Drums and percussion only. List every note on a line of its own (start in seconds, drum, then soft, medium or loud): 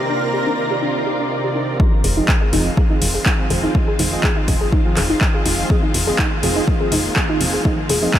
1.80 kick loud
2.04 open hi-hat loud
2.28 kick loud
2.28 clap loud
2.53 open hi-hat medium
2.77 kick loud
3.02 open hi-hat loud
3.26 kick loud
3.26 clap loud
3.50 open hi-hat medium
3.75 kick loud
3.99 open hi-hat loud
4.24 kick loud
4.24 clap loud
4.48 kick medium
4.48 open hi-hat medium
4.72 kick loud
4.97 clap medium
4.97 open hi-hat loud
5.21 kick loud
5.21 clap loud
5.46 open hi-hat medium
5.70 kick loud
5.94 open hi-hat loud
6.19 kick loud
6.19 clap loud
6.43 open hi-hat medium
6.68 kick loud
6.92 open hi-hat loud
7.16 kick loud
7.16 clap loud
7.41 open hi-hat medium
7.65 kick loud
7.89 open hi-hat loud
8.14 kick loud
8.14 clap loud